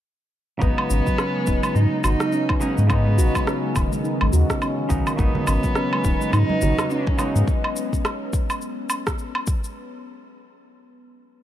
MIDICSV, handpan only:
0, 0, Header, 1, 2, 480
1, 0, Start_track
1, 0, Key_signature, 5, "minor"
1, 0, Tempo, 571429
1, 518, Time_signature, 4, 2, 24, 8
1, 9601, End_track
2, 0, Start_track
2, 0, Title_t, "Handpan"
2, 0, Program_c, 0, 114
2, 516, Note_on_c, 0, 56, 78
2, 647, Note_off_c, 0, 56, 0
2, 657, Note_on_c, 0, 56, 66
2, 747, Note_off_c, 0, 56, 0
2, 754, Note_on_c, 0, 61, 71
2, 883, Note_off_c, 0, 61, 0
2, 897, Note_on_c, 0, 54, 99
2, 992, Note_off_c, 0, 54, 0
2, 995, Note_on_c, 0, 61, 97
2, 1123, Note_off_c, 0, 61, 0
2, 1137, Note_on_c, 0, 56, 93
2, 1194, Note_off_c, 0, 56, 0
2, 1235, Note_on_c, 0, 63, 88
2, 1370, Note_off_c, 0, 63, 0
2, 1371, Note_on_c, 0, 56, 91
2, 1469, Note_off_c, 0, 56, 0
2, 1474, Note_on_c, 0, 63, 79
2, 1610, Note_off_c, 0, 63, 0
2, 1611, Note_on_c, 0, 56, 68
2, 1704, Note_off_c, 0, 56, 0
2, 1715, Note_on_c, 0, 66, 91
2, 1850, Note_off_c, 0, 66, 0
2, 1856, Note_on_c, 0, 54, 70
2, 1951, Note_off_c, 0, 54, 0
2, 1952, Note_on_c, 0, 61, 94
2, 2082, Note_off_c, 0, 61, 0
2, 2096, Note_on_c, 0, 59, 67
2, 2187, Note_off_c, 0, 59, 0
2, 2198, Note_on_c, 0, 56, 92
2, 2329, Note_off_c, 0, 56, 0
2, 2339, Note_on_c, 0, 56, 89
2, 2433, Note_off_c, 0, 56, 0
2, 2436, Note_on_c, 0, 63, 72
2, 2571, Note_off_c, 0, 63, 0
2, 2579, Note_on_c, 0, 56, 92
2, 2672, Note_on_c, 0, 66, 98
2, 2673, Note_off_c, 0, 56, 0
2, 2809, Note_off_c, 0, 66, 0
2, 2816, Note_on_c, 0, 56, 77
2, 2911, Note_off_c, 0, 56, 0
2, 2911, Note_on_c, 0, 61, 100
2, 3041, Note_off_c, 0, 61, 0
2, 3051, Note_on_c, 0, 56, 69
2, 3144, Note_off_c, 0, 56, 0
2, 3154, Note_on_c, 0, 51, 90
2, 3283, Note_off_c, 0, 51, 0
2, 3295, Note_on_c, 0, 56, 97
2, 3391, Note_off_c, 0, 56, 0
2, 3394, Note_on_c, 0, 63, 76
2, 3530, Note_off_c, 0, 63, 0
2, 3537, Note_on_c, 0, 56, 99
2, 3632, Note_off_c, 0, 56, 0
2, 3637, Note_on_c, 0, 66, 94
2, 3772, Note_off_c, 0, 66, 0
2, 3778, Note_on_c, 0, 61, 75
2, 3868, Note_off_c, 0, 61, 0
2, 3880, Note_on_c, 0, 61, 99
2, 4006, Note_off_c, 0, 61, 0
2, 4017, Note_on_c, 0, 51, 69
2, 4107, Note_off_c, 0, 51, 0
2, 4119, Note_on_c, 0, 51, 98
2, 4246, Note_off_c, 0, 51, 0
2, 4262, Note_on_c, 0, 56, 70
2, 4349, Note_off_c, 0, 56, 0
2, 4359, Note_on_c, 0, 56, 83
2, 4493, Note_off_c, 0, 56, 0
2, 4505, Note_on_c, 0, 56, 72
2, 4591, Note_off_c, 0, 56, 0
2, 4604, Note_on_c, 0, 61, 76
2, 4728, Note_off_c, 0, 61, 0
2, 4744, Note_on_c, 0, 54, 106
2, 4836, Note_off_c, 0, 54, 0
2, 4842, Note_on_c, 0, 61, 98
2, 4967, Note_off_c, 0, 61, 0
2, 4986, Note_on_c, 0, 56, 94
2, 5039, Note_off_c, 0, 56, 0
2, 5083, Note_on_c, 0, 63, 92
2, 5214, Note_off_c, 0, 63, 0
2, 5225, Note_on_c, 0, 56, 99
2, 5316, Note_off_c, 0, 56, 0
2, 5322, Note_on_c, 0, 63, 88
2, 5454, Note_off_c, 0, 63, 0
2, 5463, Note_on_c, 0, 56, 71
2, 5550, Note_off_c, 0, 56, 0
2, 5559, Note_on_c, 0, 66, 96
2, 5693, Note_off_c, 0, 66, 0
2, 5700, Note_on_c, 0, 54, 73
2, 5794, Note_off_c, 0, 54, 0
2, 5802, Note_on_c, 0, 61, 100
2, 5927, Note_off_c, 0, 61, 0
2, 5945, Note_on_c, 0, 59, 69
2, 6031, Note_off_c, 0, 59, 0
2, 6045, Note_on_c, 0, 56, 95
2, 6174, Note_off_c, 0, 56, 0
2, 6184, Note_on_c, 0, 56, 96
2, 6275, Note_off_c, 0, 56, 0
2, 9601, End_track
0, 0, End_of_file